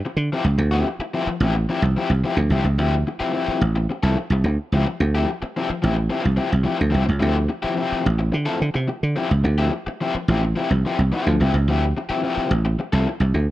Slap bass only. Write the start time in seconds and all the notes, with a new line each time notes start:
0.17 D3
0.44 C#2
0.58 D2
0.99 muted slap bass stroke
1.27 muted slap bass stroke
1.40 A1
1.82 C2
2.10 C2
2.37 D2
2.50 C2
2.64 C#2
2.78 D2
3.20 muted slap bass stroke
3.48 muted slap bass stroke
3.61 A1
4.03 C2
4.30 C2
4.44 D2
4.72 C#2
5.00 D2
5.42 muted slap bass stroke
5.70 muted slap bass stroke
5.84 A1
6.25 C2
6.52 C2
6.81 D2
6.94 C2
7.09 C#2
7.22 D2
7.64 muted slap bass stroke
7.92 muted slap bass stroke
8.06 A1
8.34 D3
8.62 D3
8.75 C3
9.03 D3
9.31 C#2
9.44 D2
9.87 muted slap bass stroke
10.15 muted slap bass stroke
10.28 A1
10.70 C2
10.99 C2
11.27 D2
11.40 C2
11.54 C#2
11.68 D2
12.10 muted slap bass stroke
12.37 muted slap bass stroke
12.51 A1
12.93 C2
13.20 C2
13.34 D2